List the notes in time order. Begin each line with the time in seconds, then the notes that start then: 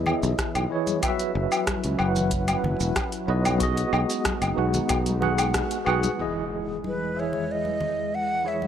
Already playing: E2 E3 B3 E4 G#4 C#5 D#5 E5
0.06 low conga, low woodblock
0.23 B1, shaker
0.38 kick, cross-stick, closed hi-hat, shaker
0.55 B1, closed hi-hat, low woodblock, shaker
0.69 E3 E4 G#4 C#5
0.87 closed hi-hat, high conga, shaker
1.00 F#3 C#4 E4 F#4 B4, kick, closed hi-hat, low woodblock, shaker
1.05 E5
1.19 closed hi-hat, shaker
1.35 F#1
1.52 low woodblock, shaker
1.67 kick, cross-stick, closed hi-hat, high conga, shaker
1.84 C#2, closed hi-hat, shaker
1.97 F#1 F#3 F#4 B4 F#5, low woodblock
2.16 low conga, shaker
2.31 kick, closed hi-hat, shaker
2.48 closed hi-hat, high conga, low woodblock, shaker
2.64 F#1, low conga
2.80 E1, shaker
2.96 kick, cross-stick, closed hi-hat, low woodblock, shaker
3.12 closed hi-hat, shaker
3.27 B1 F#3 F#4 B4 D#5
3.45 closed hi-hat, high conga, low woodblock, shaker
3.58 G#3 B3 D#4 F#4 G#4, kick, closed hi-hat, shaker
3.63 D#5
3.77 closed hi-hat, shaker
3.93 B1, low woodblock
4.10 closed hi-hat, shaker
4.25 kick, cross-stick, closed hi-hat, high conga, shaker
4.42 F#1, closed hi-hat, low woodblock, shaker
4.56 B1 B3 F#4 G#4 F#5
4.74 closed hi-hat, low conga, shaker
4.89 B1, kick, closed hi-hat, low woodblock, shaker
5.06 closed hi-hat, high conga, shaker
5.21 B3 F#4 G#4 F#5, low conga
5.38 closed hi-hat, low woodblock, shaker
5.54 kick, cross-stick, closed hi-hat, shaker
5.71 closed hi-hat, shaker
5.84 B1 B3 F#4 G#4 F#5, low woodblock
6.03 closed hi-hat, high conga, shaker
6.16 E2 E3 G#3 E4 G#4 B4, impact
6.21 E3 D#5
6.36 shaker
6.83 high conga, shaker
6.87 B4
7.14 E3 E4 G#4 E5
7.19 C#5
7.33 low conga
7.51 D#5
7.65 high conga
7.81 low conga
7.97 shaker
8.12 F#5, shaker
8.29 shaker
8.44 E3 E4 G#4 C#5
8.48 E5
8.62 high conga, shaker